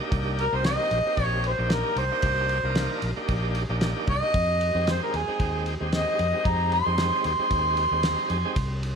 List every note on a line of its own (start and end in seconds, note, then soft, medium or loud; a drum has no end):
0.00 0.46 A#3 loud
0.00 0.47 D4 loud
0.00 0.47 D#4 medium
0.00 0.47 G4 loud
0.12 0.48 C2 loud
0.12 kick loud
0.12 ride medium
0.39 0.56 A#4 loud
0.39 ride medium
0.52 0.76 C2 medium
0.52 0.99 A#3 medium
0.52 0.99 C4 medium
0.52 1.00 D#4 medium
0.52 1.00 G4 loud
0.52 0.65 C5 medium
0.64 1.24 D#5 loud
0.64 snare loud
0.64 ride medium
0.91 1.04 A#1 loud
0.91 ride medium
1.05 1.52 A#3 medium
1.05 1.52 C4 medium
1.05 1.52 D#4 medium
1.05 1.53 G4 medium
1.05 muted fingered electric bass stroke soft
1.17 1.53 A#1 medium
1.17 kick medium
1.17 ride medium
1.24 1.42 C#5 loud
1.44 1.74 C5 medium
1.44 ride medium
1.58 1.82 A#1 medium
1.58 2.05 A#3 medium
1.58 2.05 D4 medium
1.58 2.05 D#4 medium
1.58 2.05 G4 medium
1.70 1.97 A#4 medium
1.70 snare loud
1.70 ride medium
1.96 2.09 C2 medium
1.96 3.00 C5 loud
1.96 ride medium
2.11 2.58 A#3 medium
2.11 2.58 D4 medium
2.11 2.58 D#4 medium
2.11 2.58 G4 medium
2.22 2.59 C2 loud
2.22 kick loud
2.22 ride medium
2.49 ride medium
2.63 2.87 C2 medium
2.63 3.10 A#3 medium
2.63 3.11 D4 medium
2.63 3.11 D#4 medium
2.63 3.11 A#4 loud
2.75 snare loud
2.75 ride medium
3.02 3.15 A#1 medium
3.02 ride medium
3.16 3.63 A#3 medium
3.16 3.63 D4 medium
3.16 3.64 D#4 medium
3.16 3.64 G4 loud
3.16 muted fingered electric bass stroke soft
3.29 3.64 A#1 medium
3.29 kick medium
3.29 ride medium
3.55 ride medium
3.69 3.92 A#1 medium
3.69 4.16 A#3 medium
3.69 4.16 D4 medium
3.69 4.16 D#4 medium
3.69 4.16 G4 loud
3.81 snare loud
3.81 ride medium
4.07 4.20 C2 medium
4.07 4.86 D#5 loud
4.07 kick medium
4.07 ride medium
4.22 4.34 A#3 medium
4.22 4.34 D4 medium
4.22 4.35 D#4 medium
4.22 4.35 G4 medium
4.34 4.70 F2 loud
4.34 kick loud
4.34 ride medium
4.61 ride medium
4.74 4.98 F2 medium
4.74 5.21 G#3 medium
4.74 5.21 C4 medium
4.74 5.22 D#4 medium
4.74 5.22 G4 medium
4.87 5.02 C5 medium
4.87 snare loud
4.87 ride medium
5.03 5.14 A#4 medium
5.14 5.26 D#2 medium
5.14 5.66 G#4 medium
5.14 ride medium
5.27 5.74 G#3 medium
5.27 5.74 C4 medium
5.27 5.75 D#4 medium
5.27 5.75 G5 medium
5.27 muted fingered electric bass stroke soft
5.40 5.75 D#2 medium
5.40 kick medium
5.40 ride medium
5.66 ride medium
5.80 6.04 D#2 medium
5.80 6.27 G#3 medium
5.80 6.27 C4 medium
5.80 6.27 D#4 medium
5.80 6.27 G4 medium
5.92 6.49 D#5 loud
5.92 snare loud
5.92 ride medium
6.19 6.32 F2 medium
6.19 ride medium
6.33 6.80 G#3 medium
6.33 6.80 C4 medium
6.33 6.80 D#4 medium
6.33 6.80 G4 medium
6.45 6.81 F2 loud
6.45 6.72 A#5 loud
6.45 kick loud
6.45 ride medium
6.72 7.24 C6 loud
6.72 ride medium
6.86 7.09 F2 loud
6.86 7.32 G#3 medium
6.86 7.33 C4 medium
6.86 7.33 D#4 medium
6.86 7.33 G4 loud
6.98 snare loud
6.98 ride medium
7.24 7.37 D#2 medium
7.24 8.79 C6 loud
7.24 ride medium
7.39 7.85 G#3 medium
7.39 7.85 C4 medium
7.39 7.86 D#4 medium
7.39 7.86 G4 medium
7.39 muted fingered electric bass stroke soft
7.51 7.86 D#2 loud
7.51 kick medium
7.51 ride medium
7.77 ride medium
7.91 8.14 D#2 medium
7.91 8.38 G#3 loud
7.91 8.38 C4 loud
7.91 8.38 D#4 medium
7.91 8.39 G4 loud
8.03 8.28 A#5 medium
8.03 snare loud
8.03 ride medium
8.30 8.43 F2 medium
8.30 8.55 G#5 medium
8.30 ride medium
8.45 8.57 G#3 medium
8.45 8.57 C4 medium
8.45 8.57 D#4 loud
8.45 8.57 G4 loud
8.56 8.92 C2 loud
8.56 kick loud
8.56 ride medium
8.83 ride medium